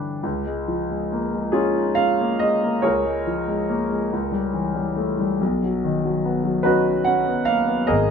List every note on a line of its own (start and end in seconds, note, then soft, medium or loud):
0.00 0.20 G2 soft
0.00 0.26 D3 soft
0.00 0.26 E3 soft
0.00 0.23 D4 soft
0.00 0.20 G5 soft
0.00 0.21 B5 soft
0.00 0.23 D6 soft
0.00 0.24 F#6 soft
0.23 2.81 C#2 soft
0.46 0.81 G#3 soft
0.68 1.03 F3 soft
0.91 1.25 G#3 soft
1.12 1.47 A#3 soft
1.34 1.69 G#3 soft
1.52 1.95 C#4 medium
1.52 1.95 F4 soft
1.52 1.98 G#4 medium
1.76 1.99 D#4 soft
1.95 2.33 C#4 soft
1.95 2.41 F5 medium
2.21 2.55 A#3 soft
2.39 2.63 G#3 soft
2.39 2.83 D#5 medium
2.63 2.85 A#3 soft
2.82 4.07 C#2 soft
2.82 4.92 G#4 soft
2.82 4.93 A#4 medium
2.82 4.96 C#5 medium
3.05 3.39 G#3 soft
3.27 3.61 F3 soft
3.48 3.82 G#3 soft
3.69 4.03 A#3 soft
3.90 4.12 G#3 soft
4.13 5.37 C#2 soft
4.32 4.67 G3 soft
4.54 4.88 E3 soft
4.75 5.10 G3 soft
4.96 5.31 A3 soft
5.19 5.40 G3 soft
5.41 7.85 B1 soft
5.63 5.96 F#3 soft
5.84 6.17 D#3 soft
6.05 6.37 F#3 soft
6.25 6.57 B3 soft
6.44 6.77 F#3 soft
6.63 6.98 C#4 soft
6.63 6.85 D#4 medium
6.63 7.03 F#4 soft
6.63 7.05 B4 medium
6.87 7.06 D#4 soft
7.05 7.39 C#4 soft
7.05 7.46 F#5 medium
7.28 7.60 B3 soft
7.45 7.68 A#3 soft
7.45 7.87 F5 medium
7.67 7.88 B3 soft
7.87 8.11 G#1 soft
7.87 8.11 G#4 medium
7.87 8.11 A#4 medium
7.87 8.11 D#5 medium